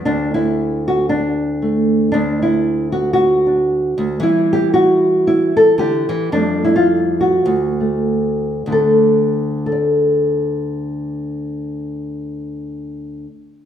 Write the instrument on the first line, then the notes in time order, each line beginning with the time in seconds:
nylon-string guitar
0.05 D2 D4
0.34 E4
0.88 F#4
1.09 D4
1.62 A3
2.12 D2 D4
2.42 E4
2.92 F#4
3.13 F#4
3.46 D4
3.98 D2
4.20 E3 G3 B3 E4
4.53 G4
4.74 F#4
5.27 E4
5.57 A4
5.78 D3 G4
6.09 E3
6.32 F2 F3 G3 A3 D4
6.65 E4
6.76 F4
7.21 F#4
7.46 D2
7.80 A3
8.66 D2 D3 A3
8.72 A4
9.66 A4
9.72 D5